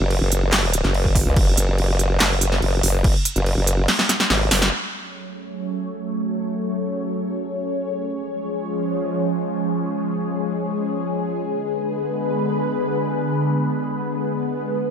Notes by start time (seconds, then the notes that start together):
0.00 F#1
0.11 crash
0.21 F#1
0.32 closed hi-hat
0.53 snare, clap, crash
0.74 closed hi-hat
0.84 F#1, snare
0.94 crash
1.05 kick
1.15 kick, open hi-hat
1.26 C#2
1.36 F#1, kick, crash
1.57 F#1, closed hi-hat
1.78 crash
1.99 closed hi-hat
2.20 F#1, snare, clap, crash
2.41 closed hi-hat
2.52 snare
2.62 F#1, crash
2.83 F#1, open hi-hat
3.04 kick, crash
3.25 closed hi-hat
3.36 F#1, closed hi-hat
3.46 crash
3.57 F#1
3.67 closed hi-hat
3.88 snare, crash
3.99 snare
4.09 snare, closed hi-hat
4.20 snare
4.30 G#1, snare, crash
4.51 F#1, snare, open hi-hat
4.62 snare
4.72 F#3 A3 C#4 G#4 C#5
8.08 F3 G#3
11.43 D3 B3 B4
14.79 D#3 F#3 F#4 B4